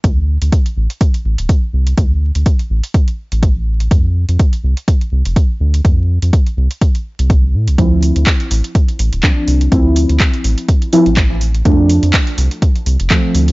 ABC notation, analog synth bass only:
X:1
M:4/4
L:1/16
Q:"Swing 16ths" 1/4=124
K:Dm
V:1 name="Analog synth bass" clef=bass
D,,3 D,, z2 A,,, z3 A,,, D,,, z2 C,,2 | D,,3 D,, z2 A,,, z4 A,,,4- A,,, | F,,3 F,, z2 C,, z3 C,, F,,, z2 D,,2 | F,,3 F,, z2 C,, z4 C,,3 A,, C,, |
D,,3 D,, z2 A,,, z3 A,,, D,,, z2 C,,2 | D,,3 D,, z2 A,,, z4 A,,,4- A,,, | F,,3 F,, z2 C,, z3 C,, F,,, z2 D,,2 |]